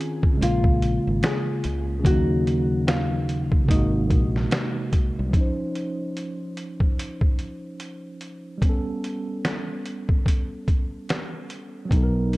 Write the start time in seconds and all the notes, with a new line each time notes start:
Already playing: D#3 C4 C#4 F4 G#4
0.01 closed hi-hat
0.23 kick
0.34 C#3 G#3
0.41 A#1 A#3 F4, closed hi-hat
0.45 F4
0.64 kick
0.82 closed hi-hat
1.07 G#1
1.23 G#4, snare, closed hi-hat
1.64 C#2, closed hi-hat
1.99 C#3
2.04 D#2 F#3 A#3 F#4, kick, closed hi-hat
2.11 D#4
2.47 closed hi-hat
2.87 F4, snare, closed hi-hat
3.29 closed hi-hat
3.52 kick
3.64 C3 G#3
3.69 G#1 A#3 D#4, kick, closed hi-hat
3.75 F#4
4.10 A#1, kick, closed hi-hat
4.36 snare
4.51 snare, closed hi-hat
4.93 kick, closed hi-hat
5.19 C2
5.29 F3 C#4
5.33 D#4, kick, closed hi-hat
5.41 C5
5.75 closed hi-hat
6.17 closed hi-hat
6.57 closed hi-hat
6.80 kick
6.99 closed hi-hat
7.21 kick
7.39 closed hi-hat
7.80 closed hi-hat
8.21 closed hi-hat
8.58 G3 B3
8.62 C#4, kick, closed hi-hat
8.69 A4
9.04 closed hi-hat
9.45 snare, closed hi-hat
9.86 closed hi-hat
10.09 kick
10.26 kick, closed hi-hat
10.68 kick, closed hi-hat
11.09 snare, closed hi-hat
11.50 closed hi-hat
11.85 F#3
11.89 B1 B3 D#4, kick, closed hi-hat
11.97 A4
12.03 A#4
12.33 closed hi-hat